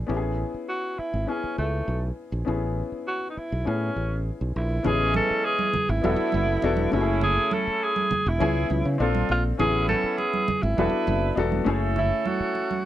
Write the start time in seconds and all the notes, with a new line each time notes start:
Already playing: A3 D4 G#4 C#5
0.07 A1 B3 C#4 E4 G4
0.17 G#4
0.54 muted fingered electric bass stroke
0.69 F#4
0.99 E4, muted fingered electric bass stroke
1.14 G#1
1.26 B3 C#4 E4 G#4
1.44 muted fingered electric bass stroke
1.58 C#2 A3
1.88 B1
2.32 A#1
2.45 A1 B3 C#4 E4 G#4
2.92 muted fingered electric bass stroke
3.07 F#4
3.30 D#4
3.37 E4, muted fingered electric bass stroke
3.52 B1
3.64 A2 B3 C#4 E4 G#4
3.96 A1
4.41 B1
4.56 A#1 E4
4.83 A1 E3 G#3 B3 C#4 E4 G#4, low conga
5.14 A4, muted conga, high conga
5.30 muted fingered electric bass stroke
5.45 G#4
5.59 high conga
5.74 muted fingered electric bass stroke, muted conga, high conga, low conga
5.89 G#1 E4
6.02 E1 A3 B3 D4 E4 F#4 A4, high conga
6.20 muted fingered electric bass stroke
6.32 F#1, muted conga, high conga
6.62 E1 B3 D4 F#4 A4, muted conga
6.77 high conga
6.91 F#1 A3 C#4 E4 F#4, muted conga
7.01 G#4
7.21 G#4, muted conga, low conga
7.51 A4, muted conga, high conga
7.67 muted fingered electric bass stroke
7.84 G#4
7.96 high conga
8.11 muted fingered electric bass stroke, high conga, low conga
8.26 E1 E4
8.39 C#2 B3 C#4 E4 G#4, muted conga, high conga
8.70 C#2, high conga
8.85 C#3
8.98 A#1 C4 D4 F4 A4
9.15 high conga
9.29 A#1 F4, muted conga
9.58 A1 B3 C#4 E4 G#4, low conga
9.89 A4, muted conga, high conga
10.04 muted fingered electric bass stroke
10.18 G#4, muted conga
10.34 high conga
10.48 muted fingered electric bass stroke, muted conga, high conga, low conga
10.62 G#1 E4
10.77 E1 B3 D4 E4 F#4 A4 B4, muted conga, high conga
10.93 muted fingered electric bass stroke
11.07 F#1, muted conga, high conga
11.35 E1 B3 D4 F#4 A4, muted conga
11.52 high conga
11.64 F#1 A3 C#4 E4 G#4 A4, muted conga
11.96 E4, muted conga, low conga
12.26 F#4, high conga
12.40 muted fingered electric bass stroke
12.55 muted conga
12.71 high conga